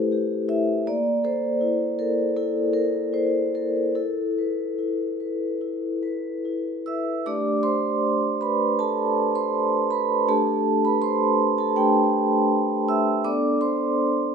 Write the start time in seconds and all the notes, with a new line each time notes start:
Already playing: A3 E4 G4 A4 B4 C5
0.12 G4
0.49 E4 E5
0.87 A#3 D5
1.24 A4 C5
1.61 E4
1.99 A4 A#4
2.36 E4 A4
2.73 A4 A#4
3.13 E4 C5
3.55 A4 A#4
3.95 E4 A4
4.38 B4
4.79 E4
5.20 B4
5.61 E4
6.03 B4
6.45 E4
6.86 B4 E5 E6
7.26 A3 D4 G4 D5 D6
7.63 C5 C6
8.41 B4 B5
8.79 A4 A5
9.35 C5 C6
9.90 B4 B5
10.28 A3 D4 G4 A4 A5
10.85 B4 B5
11.02 C5 C6
11.58 A4 A5
11.76 A3 D4 G4 G5
12.88 E5 E6
13.24 B3 D4 A4 D5 D6
13.61 C5 C6